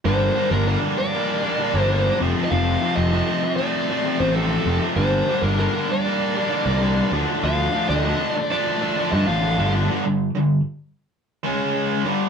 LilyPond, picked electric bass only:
\new Staff \with { instrumentName = "Picked electric bass" } { \clef bass \time 4/4 \key g \minor \tempo 4 = 98 g,,8 r16 g,,8 r4. g,,8. f,,16 r16 | f,,8 r16 f,,8 r4. a,,8. f,,16 r16 | g,,8 r16 g,,8 r4. c,8. d,16 r16 | d,8 r16 d,8 r4. g,16 a,,8 g,,8 |
r1 | }